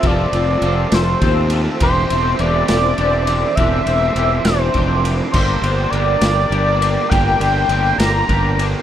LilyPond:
<<
  \new Staff \with { instrumentName = "Analog synth pad" } { \time 6/8 \key c \mixolydian \tempo 4. = 68 << { a''2. | d'''2.~ | d'''2.~ | d'''2. |
c'''2. | } \\ { <f' c''>2. | e''2.~ | e''2. | <bes' g''>2.~ |
<bes' g''>2. | } >> }
  \new Staff \with { instrumentName = "Analog synth lead" } { \time 6/8 \key c \mixolydian d''4. c''4 r8 | c''4 d''2 | e''4. c''4 r8 | c''4 d''2 |
g''4. bes''4 r8 | }
  \new Staff \with { instrumentName = "Clean electric guitar" } { \time 6/8 \key c \mixolydian <f c' f' a'>8 <c' f' a'>8 <f c' f' a'>8 <c' f' a'>8 <f c' f' a'>8 <c' f' a'>8 | <e c' d' g'>8 <c' d' g'>8 <e c' d' g'>8 <c' d' g'>8 <e c' d' g'>8 <c' d' g'>8 | <e c' d' g'>8 <c' d' g'>8 <e c' d' g'>8 <c' d' g'>8 <e c' d' g'>8 <c' d' g'>8 | <g bes d' g'>8 <bes d' g'>8 <g bes d' g'>8 <bes d' g'>8 <g bes d' g'>8 <bes d' g'>8 |
<g bes d' g'>8 <bes d' g'>8 <g bes d' g'>8 <bes d' g'>8 <g bes d' g'>8 <bes d' g'>8 | }
  \new Staff \with { instrumentName = "Overdriven electric guitar" } { \time 6/8 \key c \mixolydian <a c'>8 c'8 a8 a8 c'8 a8 | e8 c'8 e8 c'8 d'8 e8 | e8 c'8 e8 c'8 d'8 e8 | bes8 d'8 bes8 bes8 d'8 bes8 |
bes8 d'8 bes8 bes8 d'8 bes8 | }
  \new Staff \with { instrumentName = "Fingered electric bass" } { \clef bass \time 6/8 \key c \mixolydian f,,8 f,,8 f,,8 f,,8 ees,4 | e,,8 e,,8 e,,8 e,,8 e,,4 | e,,8 e,,8 e,,8 e,,8 f,,4 | g,,8 g,,8 g,,8 g,,8 g,,4 |
g,,8 g,,8 g,,8 g,,8 g,,4 | }
  \new DrumStaff \with { instrumentName = "Drums" } \drummode { \time 6/8 <bd cymr>8 cymr8 cymr8 <cymr sn>8 <bd cymr>8 cymr8 | <bd cymr>8 cymr8 cymr8 <cymr sn>8 cymr8 cymr8 | <bd cymr>8 cymr8 cymr8 <cymr sn>8 <bd cymr>8 cymr8 | <cymc bd>8 cymr8 cymr8 <cymr sn>8 cymr8 cymr8 |
<bd cymr>8 cymr8 cymr8 <cymr sn>8 <bd cymr>8 cymr8 | }
>>